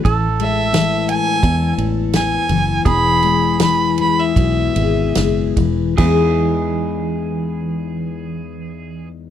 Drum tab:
CC |--------|--------|x-------|
RD |xxxxxxxx|xxxxxxxx|--------|
SD |--o---o-|--o---o-|--------|
BD |o---o---|o---o--o|o-------|